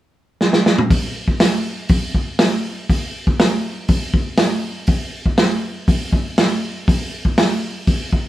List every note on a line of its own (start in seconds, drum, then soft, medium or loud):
0.41 snare medium
0.53 snare medium
0.66 snare medium
0.78 mid tom medium
0.90 kick loud
0.90 open hi-hat medium
1.28 kick medium
1.40 snare loud
1.40 open hi-hat medium
1.89 kick loud
1.89 open hi-hat medium
2.15 kick medium
2.39 snare loud
2.39 open hi-hat medium
2.90 kick loud
2.90 open hi-hat medium
3.27 kick medium
3.40 snare loud
3.40 open hi-hat medium
3.88 kick loud
3.88 open hi-hat medium
4.14 kick medium
4.38 snare loud
4.38 open hi-hat medium
4.87 kick loud
4.87 open hi-hat soft
5.26 kick medium
5.38 snare loud
5.38 open hi-hat soft
5.88 kick loud
5.88 open hi-hat medium
6.13 kick medium
6.38 snare loud
6.38 open hi-hat medium
6.88 kick loud
6.88 open hi-hat medium
7.25 kick medium
7.38 snare loud
7.38 open hi-hat medium
7.87 kick loud
7.87 open hi-hat medium
8.13 kick medium